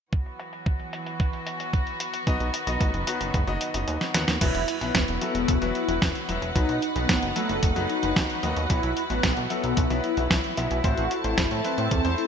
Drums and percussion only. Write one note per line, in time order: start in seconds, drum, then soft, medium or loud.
0.13 kick loud
0.13 closed hi-hat soft
0.26 closed hi-hat soft
0.40 closed hi-hat medium
0.53 closed hi-hat soft
0.66 kick loud
0.66 closed hi-hat soft
0.80 closed hi-hat soft
0.93 closed hi-hat medium
1.06 closed hi-hat medium
1.20 kick loud
1.20 closed hi-hat soft
1.33 closed hi-hat soft
1.47 closed hi-hat medium
1.60 closed hi-hat medium
1.73 kick loud
1.73 closed hi-hat soft
1.87 closed hi-hat soft
2.00 closed hi-hat medium
2.14 closed hi-hat medium
2.27 kick loud
2.27 closed hi-hat soft
2.40 closed hi-hat soft
2.54 closed hi-hat medium
2.67 closed hi-hat soft
2.81 kick loud
2.81 closed hi-hat soft
2.94 closed hi-hat soft
3.07 closed hi-hat medium
3.21 closed hi-hat soft
3.34 kick loud
3.34 closed hi-hat soft
3.47 closed hi-hat soft
3.61 closed hi-hat medium
3.74 closed hi-hat soft
3.88 closed hi-hat soft
4.01 snare soft
4.01 closed hi-hat soft
4.14 snare medium
4.14 closed hi-hat medium
4.28 snare medium
4.28 closed hi-hat soft
4.41 kick loud
4.41 closed hi-hat medium
4.41 crash medium
4.55 closed hi-hat soft
4.68 closed hi-hat medium
4.81 closed hi-hat soft
4.95 kick loud
4.95 snare loud
4.95 closed hi-hat medium
5.08 closed hi-hat soft
5.21 closed hi-hat medium
5.35 closed hi-hat soft
5.48 kick loud
5.48 closed hi-hat medium
5.62 closed hi-hat soft
5.75 closed hi-hat soft
5.89 closed hi-hat soft
6.02 kick loud
6.02 snare loud
6.02 closed hi-hat medium
6.15 closed hi-hat soft
6.29 closed hi-hat medium
6.42 closed hi-hat soft
6.56 kick loud
6.56 closed hi-hat medium
6.69 closed hi-hat soft
6.82 closed hi-hat medium
6.96 closed hi-hat soft
7.09 kick loud
7.09 snare loud
7.09 closed hi-hat medium
7.23 closed hi-hat soft
7.36 closed hi-hat medium
7.49 closed hi-hat soft
7.63 kick loud
7.63 closed hi-hat medium
7.76 closed hi-hat soft
7.90 closed hi-hat soft
8.03 closed hi-hat soft
8.16 kick loud
8.16 snare loud
8.16 closed hi-hat medium
8.30 closed hi-hat soft
8.43 closed hi-hat medium
8.57 closed hi-hat soft
8.70 kick loud
8.70 closed hi-hat medium
8.83 closed hi-hat soft
8.97 closed hi-hat medium
9.10 closed hi-hat soft
9.23 kick loud
9.23 snare loud
9.23 closed hi-hat medium
9.37 closed hi-hat soft
9.50 closed hi-hat medium
9.64 closed hi-hat soft
9.77 kick loud
9.77 closed hi-hat medium
9.90 closed hi-hat soft
10.04 closed hi-hat soft
10.17 closed hi-hat soft
10.31 kick loud
10.31 snare loud
10.31 closed hi-hat medium
10.44 closed hi-hat soft
10.57 closed hi-hat medium
10.71 closed hi-hat soft
10.84 kick loud
10.84 closed hi-hat medium
10.98 closed hi-hat soft
11.11 closed hi-hat medium
11.24 closed hi-hat soft
11.38 kick loud
11.38 snare loud
11.38 closed hi-hat medium
11.51 closed hi-hat soft
11.65 closed hi-hat medium
11.78 closed hi-hat soft
11.91 kick loud
11.91 closed hi-hat medium
12.05 closed hi-hat soft
12.18 closed hi-hat soft